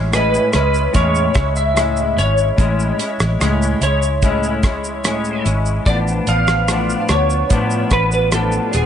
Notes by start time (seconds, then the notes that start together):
Already playing: A1 G#3 C#4 E4
0.12 A2 G#3 C#4 E4 B4, cross-stick, closed hi-hat, shaker
0.34 shaker
0.52 C#2 C#4 E4 B4, cross-stick, closed hi-hat, shaker
0.56 G#3
0.74 shaker
0.93 E2 A2 G#3 C#4 E4 C#5, kick, closed hi-hat, shaker
1.15 shaker
1.34 C#2 G#3 C#4 E4, kick, cross-stick, closed hi-hat, shaker
1.56 E5, shaker
1.74 A2 G#3 C#4, cross-stick, closed hi-hat, shaker
1.78 E4
1.97 shaker
2.16 G#1 G#3 C#4 E4 C#5, closed hi-hat, shaker
2.38 shaker
2.57 A1 A2 G#3 C#4 E4, kick, closed hi-hat, shaker
2.80 shaker
2.99 G#3 C#4 E4, closed hi-hat, shaker
3.20 A1, cross-stick, shaker
3.40 C#2 A2 G#3 C#4 E4, cross-stick, closed hi-hat, shaker
3.62 shaker
3.81 C#2 C#4 E4 C#5, closed hi-hat, shaker
3.86 G#3
4.02 shaker
4.22 A2 G#3 C#4 E4, kick, closed hi-hat, shaker
4.43 shaker
4.63 G#3 C#4 E4, kick, cross-stick, closed hi-hat, shaker
4.84 shaker
5.04 A2 G#3 C#4 E4, cross-stick, closed hi-hat, shaker
5.25 shaker
5.44 G#1 G#3 C#4 E4, closed hi-hat, shaker
5.66 shaker
5.86 A1 A2 F3 B3 D4 D5, kick, closed hi-hat, shaker
6.08 shaker
6.27 A1 F3 B3 D4 F5, closed hi-hat, shaker
6.48 cross-stick, shaker
6.68 A2 F3 B3 D4, cross-stick, closed hi-hat, shaker
6.90 shaker
7.08 D2 B3 D4 C#5, cross-stick, closed hi-hat, shaker
7.13 F3
7.30 shaker
7.50 A2 F3 B3 D4, kick, closed hi-hat, shaker
7.70 shaker
7.89 A1 B3 D4 B4, kick, cross-stick, closed hi-hat, shaker
7.94 F3
8.12 B4, shaker
8.31 A2 F3 B3 D4 A4, cross-stick, closed hi-hat, shaker
8.52 shaker
8.71 D#1 F3 B3 D4 G#4, closed hi-hat, shaker